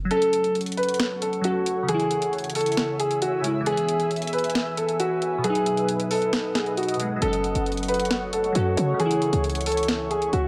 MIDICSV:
0, 0, Header, 1, 6, 480
1, 0, Start_track
1, 0, Tempo, 444444
1, 116, Time_signature, 4, 2, 24, 8
1, 11317, End_track
2, 0, Start_track
2, 0, Title_t, "Ambient pad"
2, 0, Program_c, 0, 92
2, 117, Note_on_c, 0, 69, 84
2, 117, Note_on_c, 0, 73, 76
2, 117, Note_on_c, 0, 78, 79
2, 117, Note_on_c, 0, 85, 93
2, 2017, Note_off_c, 0, 69, 0
2, 2017, Note_off_c, 0, 78, 0
2, 2017, Note_off_c, 0, 85, 0
2, 2036, Note_on_c, 0, 76, 76
2, 2036, Note_on_c, 0, 80, 77
2, 2036, Note_on_c, 0, 88, 93
2, 3918, Note_off_c, 0, 73, 0
2, 3956, Note_on_c, 0, 71, 82
2, 5837, Note_off_c, 0, 76, 0
2, 5837, Note_off_c, 0, 80, 0
2, 5838, Note_off_c, 0, 88, 0
2, 5876, Note_on_c, 0, 75, 78
2, 5876, Note_on_c, 0, 78, 76
2, 5876, Note_on_c, 0, 87, 93
2, 7758, Note_off_c, 0, 71, 0
2, 7777, Note_off_c, 0, 75, 0
2, 7777, Note_off_c, 0, 87, 0
2, 7795, Note_on_c, 0, 69, 85
2, 7796, Note_on_c, 0, 73, 80
2, 7796, Note_on_c, 0, 85, 93
2, 9678, Note_off_c, 0, 78, 0
2, 9696, Note_off_c, 0, 69, 0
2, 9716, Note_on_c, 0, 76, 76
2, 9717, Note_on_c, 0, 80, 86
2, 11317, Note_off_c, 0, 73, 0
2, 11317, Note_off_c, 0, 76, 0
2, 11317, Note_off_c, 0, 80, 0
2, 11317, Note_off_c, 0, 85, 0
2, 11317, End_track
3, 0, Start_track
3, 0, Title_t, "Grand piano"
3, 0, Program_c, 1, 0
3, 115, Note_on_c, 1, 69, 109
3, 567, Note_off_c, 1, 69, 0
3, 835, Note_on_c, 1, 71, 82
3, 1286, Note_off_c, 1, 71, 0
3, 1316, Note_on_c, 1, 69, 78
3, 1505, Note_off_c, 1, 69, 0
3, 1562, Note_on_c, 1, 66, 88
3, 2010, Note_off_c, 1, 66, 0
3, 2036, Note_on_c, 1, 68, 98
3, 2487, Note_off_c, 1, 68, 0
3, 2759, Note_on_c, 1, 69, 82
3, 3209, Note_off_c, 1, 69, 0
3, 3235, Note_on_c, 1, 68, 84
3, 3424, Note_off_c, 1, 68, 0
3, 3478, Note_on_c, 1, 66, 88
3, 3666, Note_off_c, 1, 66, 0
3, 3957, Note_on_c, 1, 68, 115
3, 4408, Note_off_c, 1, 68, 0
3, 4677, Note_on_c, 1, 71, 84
3, 5128, Note_off_c, 1, 71, 0
3, 5154, Note_on_c, 1, 69, 72
3, 5344, Note_off_c, 1, 69, 0
3, 5397, Note_on_c, 1, 66, 85
3, 5848, Note_off_c, 1, 66, 0
3, 5875, Note_on_c, 1, 68, 105
3, 6326, Note_off_c, 1, 68, 0
3, 6597, Note_on_c, 1, 69, 90
3, 7048, Note_off_c, 1, 69, 0
3, 7074, Note_on_c, 1, 68, 76
3, 7264, Note_off_c, 1, 68, 0
3, 7317, Note_on_c, 1, 66, 82
3, 7505, Note_off_c, 1, 66, 0
3, 7795, Note_on_c, 1, 69, 113
3, 8246, Note_off_c, 1, 69, 0
3, 8515, Note_on_c, 1, 71, 85
3, 8966, Note_off_c, 1, 71, 0
3, 8996, Note_on_c, 1, 69, 80
3, 9185, Note_off_c, 1, 69, 0
3, 9241, Note_on_c, 1, 66, 86
3, 9690, Note_off_c, 1, 66, 0
3, 9715, Note_on_c, 1, 68, 98
3, 10166, Note_off_c, 1, 68, 0
3, 10439, Note_on_c, 1, 69, 82
3, 10889, Note_off_c, 1, 69, 0
3, 10915, Note_on_c, 1, 68, 83
3, 11104, Note_off_c, 1, 68, 0
3, 11157, Note_on_c, 1, 66, 86
3, 11317, Note_off_c, 1, 66, 0
3, 11317, End_track
4, 0, Start_track
4, 0, Title_t, "Synth keys"
4, 0, Program_c, 2, 88
4, 55, Note_on_c, 2, 54, 67
4, 117, Note_on_c, 2, 61, 63
4, 180, Note_on_c, 2, 69, 70
4, 297, Control_c, 2, 64, 127
4, 1496, Note_off_c, 2, 54, 0
4, 1527, Note_on_c, 2, 54, 54
4, 1528, Note_off_c, 2, 61, 0
4, 1558, Note_on_c, 2, 61, 45
4, 1560, Note_off_c, 2, 69, 0
4, 1590, Note_on_c, 2, 69, 59
4, 1973, Note_on_c, 2, 49, 71
4, 2021, Note_off_c, 2, 54, 0
4, 2036, Note_on_c, 2, 52, 64
4, 2037, Note_off_c, 2, 61, 0
4, 2048, Control_c, 2, 64, 0
4, 2053, Note_off_c, 2, 69, 0
4, 2099, Note_on_c, 2, 64, 81
4, 2255, Control_c, 2, 64, 127
4, 3650, Note_off_c, 2, 49, 0
4, 3682, Note_off_c, 2, 52, 0
4, 3685, Note_on_c, 2, 49, 52
4, 3714, Note_off_c, 2, 64, 0
4, 3716, Note_on_c, 2, 56, 46
4, 3748, Note_on_c, 2, 64, 55
4, 3894, Note_on_c, 2, 52, 71
4, 3940, Note_off_c, 2, 49, 0
4, 3956, Note_off_c, 2, 56, 0
4, 3957, Note_on_c, 2, 59, 60
4, 3972, Note_off_c, 2, 64, 0
4, 3972, Control_c, 2, 64, 0
4, 4020, Note_on_c, 2, 68, 69
4, 4154, Control_c, 2, 64, 127
4, 5806, Note_off_c, 2, 52, 0
4, 5812, Note_on_c, 2, 47, 75
4, 5838, Note_off_c, 2, 59, 0
4, 5870, Note_off_c, 2, 68, 0
4, 5875, Note_on_c, 2, 54, 67
4, 5891, Control_c, 2, 64, 0
4, 5938, Note_on_c, 2, 63, 76
4, 6083, Control_c, 2, 64, 127
4, 7489, Note_off_c, 2, 47, 0
4, 7522, Note_off_c, 2, 54, 0
4, 7524, Note_on_c, 2, 47, 50
4, 7554, Note_off_c, 2, 63, 0
4, 7555, Note_on_c, 2, 54, 45
4, 7586, Note_on_c, 2, 56, 57
4, 7722, Note_off_c, 2, 54, 0
4, 7735, Note_on_c, 2, 54, 69
4, 7780, Note_off_c, 2, 47, 0
4, 7798, Note_on_c, 2, 61, 63
4, 7811, Note_off_c, 2, 56, 0
4, 7811, Control_c, 2, 64, 0
4, 7860, Note_on_c, 2, 69, 72
4, 8027, Control_c, 2, 64, 127
4, 9176, Note_off_c, 2, 54, 0
4, 9207, Note_on_c, 2, 54, 53
4, 9208, Note_off_c, 2, 61, 0
4, 9238, Note_on_c, 2, 61, 46
4, 9240, Note_off_c, 2, 69, 0
4, 9269, Note_on_c, 2, 69, 58
4, 9653, Note_on_c, 2, 49, 68
4, 9701, Note_off_c, 2, 54, 0
4, 9716, Note_on_c, 2, 52, 62
4, 9717, Note_off_c, 2, 61, 0
4, 9728, Control_c, 2, 64, 0
4, 9732, Note_off_c, 2, 69, 0
4, 9779, Note_on_c, 2, 64, 80
4, 9888, Control_c, 2, 64, 127
4, 11317, Note_off_c, 2, 49, 0
4, 11317, Note_off_c, 2, 52, 0
4, 11317, Note_off_c, 2, 64, 0
4, 11317, End_track
5, 0, Start_track
5, 0, Title_t, "808-style bass"
5, 0, Program_c, 3, 38
5, 7796, Note_on_c, 3, 30, 112
5, 8141, Note_off_c, 3, 30, 0
5, 8156, Note_on_c, 3, 30, 99
5, 9193, Note_off_c, 3, 30, 0
5, 9235, Note_on_c, 3, 42, 106
5, 9466, Note_off_c, 3, 42, 0
5, 9475, Note_on_c, 3, 49, 104
5, 10051, Note_off_c, 3, 49, 0
5, 10075, Note_on_c, 3, 37, 102
5, 11112, Note_off_c, 3, 37, 0
5, 11156, Note_on_c, 3, 37, 103
5, 11317, Note_off_c, 3, 37, 0
5, 11317, End_track
6, 0, Start_track
6, 0, Title_t, "Drums"
6, 116, Note_on_c, 9, 42, 81
6, 224, Note_off_c, 9, 42, 0
6, 236, Note_on_c, 9, 42, 67
6, 344, Note_off_c, 9, 42, 0
6, 356, Note_on_c, 9, 42, 72
6, 464, Note_off_c, 9, 42, 0
6, 476, Note_on_c, 9, 42, 60
6, 584, Note_off_c, 9, 42, 0
6, 596, Note_on_c, 9, 42, 45
6, 657, Note_off_c, 9, 42, 0
6, 657, Note_on_c, 9, 42, 54
6, 716, Note_off_c, 9, 42, 0
6, 716, Note_on_c, 9, 42, 59
6, 776, Note_off_c, 9, 42, 0
6, 776, Note_on_c, 9, 42, 70
6, 836, Note_off_c, 9, 42, 0
6, 836, Note_on_c, 9, 42, 65
6, 896, Note_off_c, 9, 42, 0
6, 896, Note_on_c, 9, 42, 65
6, 956, Note_off_c, 9, 42, 0
6, 956, Note_on_c, 9, 42, 65
6, 1016, Note_off_c, 9, 42, 0
6, 1016, Note_on_c, 9, 42, 65
6, 1076, Note_off_c, 9, 42, 0
6, 1076, Note_on_c, 9, 38, 103
6, 1076, Note_on_c, 9, 42, 80
6, 1184, Note_off_c, 9, 38, 0
6, 1184, Note_off_c, 9, 42, 0
6, 1316, Note_on_c, 9, 42, 79
6, 1424, Note_off_c, 9, 42, 0
6, 1436, Note_on_c, 9, 42, 50
6, 1544, Note_off_c, 9, 42, 0
6, 1556, Note_on_c, 9, 42, 77
6, 1664, Note_off_c, 9, 42, 0
6, 1796, Note_on_c, 9, 42, 82
6, 1904, Note_off_c, 9, 42, 0
6, 2036, Note_on_c, 9, 42, 83
6, 2144, Note_off_c, 9, 42, 0
6, 2156, Note_on_c, 9, 42, 66
6, 2264, Note_off_c, 9, 42, 0
6, 2276, Note_on_c, 9, 42, 72
6, 2384, Note_off_c, 9, 42, 0
6, 2396, Note_on_c, 9, 42, 62
6, 2504, Note_off_c, 9, 42, 0
6, 2516, Note_on_c, 9, 42, 45
6, 2575, Note_off_c, 9, 42, 0
6, 2575, Note_on_c, 9, 42, 54
6, 2636, Note_off_c, 9, 42, 0
6, 2636, Note_on_c, 9, 42, 58
6, 2695, Note_off_c, 9, 42, 0
6, 2695, Note_on_c, 9, 42, 72
6, 2756, Note_off_c, 9, 42, 0
6, 2756, Note_on_c, 9, 42, 65
6, 2756, Note_on_c, 9, 46, 83
6, 2815, Note_off_c, 9, 42, 0
6, 2815, Note_on_c, 9, 42, 66
6, 2864, Note_off_c, 9, 46, 0
6, 2875, Note_off_c, 9, 42, 0
6, 2875, Note_on_c, 9, 42, 67
6, 2935, Note_off_c, 9, 42, 0
6, 2935, Note_on_c, 9, 42, 65
6, 2995, Note_on_c, 9, 38, 108
6, 2996, Note_off_c, 9, 42, 0
6, 2996, Note_on_c, 9, 42, 82
6, 3103, Note_off_c, 9, 38, 0
6, 3104, Note_off_c, 9, 42, 0
6, 3235, Note_on_c, 9, 42, 76
6, 3343, Note_off_c, 9, 42, 0
6, 3356, Note_on_c, 9, 42, 49
6, 3464, Note_off_c, 9, 42, 0
6, 3476, Note_on_c, 9, 42, 78
6, 3584, Note_off_c, 9, 42, 0
6, 3716, Note_on_c, 9, 42, 83
6, 3824, Note_off_c, 9, 42, 0
6, 3956, Note_on_c, 9, 42, 85
6, 4064, Note_off_c, 9, 42, 0
6, 4076, Note_on_c, 9, 42, 66
6, 4184, Note_off_c, 9, 42, 0
6, 4196, Note_on_c, 9, 42, 72
6, 4304, Note_off_c, 9, 42, 0
6, 4316, Note_on_c, 9, 42, 61
6, 4424, Note_off_c, 9, 42, 0
6, 4436, Note_on_c, 9, 42, 43
6, 4496, Note_off_c, 9, 42, 0
6, 4496, Note_on_c, 9, 42, 52
6, 4556, Note_off_c, 9, 42, 0
6, 4556, Note_on_c, 9, 42, 61
6, 4616, Note_off_c, 9, 42, 0
6, 4616, Note_on_c, 9, 42, 69
6, 4676, Note_off_c, 9, 42, 0
6, 4676, Note_on_c, 9, 42, 67
6, 4736, Note_off_c, 9, 42, 0
6, 4736, Note_on_c, 9, 42, 66
6, 4796, Note_off_c, 9, 42, 0
6, 4796, Note_on_c, 9, 42, 67
6, 4856, Note_off_c, 9, 42, 0
6, 4856, Note_on_c, 9, 42, 66
6, 4916, Note_off_c, 9, 42, 0
6, 4916, Note_on_c, 9, 38, 104
6, 4916, Note_on_c, 9, 42, 80
6, 5024, Note_off_c, 9, 38, 0
6, 5024, Note_off_c, 9, 42, 0
6, 5156, Note_on_c, 9, 42, 76
6, 5264, Note_off_c, 9, 42, 0
6, 5277, Note_on_c, 9, 42, 50
6, 5385, Note_off_c, 9, 42, 0
6, 5396, Note_on_c, 9, 42, 79
6, 5504, Note_off_c, 9, 42, 0
6, 5636, Note_on_c, 9, 42, 82
6, 5744, Note_off_c, 9, 42, 0
6, 5876, Note_on_c, 9, 42, 81
6, 5984, Note_off_c, 9, 42, 0
6, 5996, Note_on_c, 9, 42, 65
6, 6104, Note_off_c, 9, 42, 0
6, 6116, Note_on_c, 9, 42, 73
6, 6224, Note_off_c, 9, 42, 0
6, 6236, Note_on_c, 9, 42, 61
6, 6344, Note_off_c, 9, 42, 0
6, 6356, Note_on_c, 9, 42, 69
6, 6464, Note_off_c, 9, 42, 0
6, 6476, Note_on_c, 9, 42, 54
6, 6584, Note_off_c, 9, 42, 0
6, 6596, Note_on_c, 9, 46, 84
6, 6704, Note_off_c, 9, 46, 0
6, 6716, Note_on_c, 9, 42, 56
6, 6824, Note_off_c, 9, 42, 0
6, 6836, Note_on_c, 9, 38, 107
6, 6836, Note_on_c, 9, 42, 80
6, 6944, Note_off_c, 9, 38, 0
6, 6944, Note_off_c, 9, 42, 0
6, 7075, Note_on_c, 9, 38, 89
6, 7076, Note_on_c, 9, 42, 77
6, 7183, Note_off_c, 9, 38, 0
6, 7184, Note_off_c, 9, 42, 0
6, 7196, Note_on_c, 9, 42, 47
6, 7304, Note_off_c, 9, 42, 0
6, 7316, Note_on_c, 9, 42, 67
6, 7376, Note_off_c, 9, 42, 0
6, 7376, Note_on_c, 9, 42, 63
6, 7436, Note_off_c, 9, 42, 0
6, 7436, Note_on_c, 9, 42, 68
6, 7495, Note_off_c, 9, 42, 0
6, 7495, Note_on_c, 9, 42, 67
6, 7556, Note_off_c, 9, 42, 0
6, 7556, Note_on_c, 9, 42, 83
6, 7664, Note_off_c, 9, 42, 0
6, 7796, Note_on_c, 9, 42, 84
6, 7904, Note_off_c, 9, 42, 0
6, 7916, Note_on_c, 9, 42, 63
6, 8024, Note_off_c, 9, 42, 0
6, 8036, Note_on_c, 9, 42, 72
6, 8144, Note_off_c, 9, 42, 0
6, 8156, Note_on_c, 9, 42, 60
6, 8264, Note_off_c, 9, 42, 0
6, 8276, Note_on_c, 9, 42, 43
6, 8336, Note_off_c, 9, 42, 0
6, 8336, Note_on_c, 9, 42, 53
6, 8396, Note_off_c, 9, 42, 0
6, 8396, Note_on_c, 9, 42, 59
6, 8456, Note_off_c, 9, 42, 0
6, 8456, Note_on_c, 9, 42, 71
6, 8515, Note_off_c, 9, 42, 0
6, 8515, Note_on_c, 9, 42, 66
6, 8575, Note_off_c, 9, 42, 0
6, 8575, Note_on_c, 9, 42, 65
6, 8635, Note_off_c, 9, 42, 0
6, 8635, Note_on_c, 9, 42, 67
6, 8695, Note_off_c, 9, 42, 0
6, 8695, Note_on_c, 9, 42, 66
6, 8755, Note_off_c, 9, 42, 0
6, 8755, Note_on_c, 9, 38, 104
6, 8755, Note_on_c, 9, 42, 83
6, 8863, Note_off_c, 9, 38, 0
6, 8863, Note_off_c, 9, 42, 0
6, 8995, Note_on_c, 9, 42, 80
6, 9103, Note_off_c, 9, 42, 0
6, 9115, Note_on_c, 9, 42, 49
6, 9223, Note_off_c, 9, 42, 0
6, 9236, Note_on_c, 9, 42, 79
6, 9344, Note_off_c, 9, 42, 0
6, 9476, Note_on_c, 9, 42, 82
6, 9584, Note_off_c, 9, 42, 0
6, 9716, Note_on_c, 9, 42, 81
6, 9824, Note_off_c, 9, 42, 0
6, 9836, Note_on_c, 9, 42, 68
6, 9944, Note_off_c, 9, 42, 0
6, 9955, Note_on_c, 9, 42, 74
6, 10063, Note_off_c, 9, 42, 0
6, 10075, Note_on_c, 9, 42, 60
6, 10183, Note_off_c, 9, 42, 0
6, 10195, Note_on_c, 9, 42, 44
6, 10255, Note_off_c, 9, 42, 0
6, 10255, Note_on_c, 9, 42, 53
6, 10315, Note_off_c, 9, 42, 0
6, 10315, Note_on_c, 9, 42, 61
6, 10375, Note_off_c, 9, 42, 0
6, 10375, Note_on_c, 9, 42, 72
6, 10435, Note_off_c, 9, 42, 0
6, 10435, Note_on_c, 9, 42, 65
6, 10435, Note_on_c, 9, 46, 85
6, 10495, Note_off_c, 9, 42, 0
6, 10495, Note_on_c, 9, 42, 67
6, 10543, Note_off_c, 9, 46, 0
6, 10555, Note_off_c, 9, 42, 0
6, 10555, Note_on_c, 9, 42, 66
6, 10615, Note_off_c, 9, 42, 0
6, 10615, Note_on_c, 9, 42, 68
6, 10675, Note_off_c, 9, 42, 0
6, 10675, Note_on_c, 9, 38, 103
6, 10675, Note_on_c, 9, 42, 81
6, 10783, Note_off_c, 9, 38, 0
6, 10783, Note_off_c, 9, 42, 0
6, 10916, Note_on_c, 9, 42, 80
6, 11024, Note_off_c, 9, 42, 0
6, 11036, Note_on_c, 9, 42, 48
6, 11144, Note_off_c, 9, 42, 0
6, 11156, Note_on_c, 9, 42, 77
6, 11264, Note_off_c, 9, 42, 0
6, 11317, End_track
0, 0, End_of_file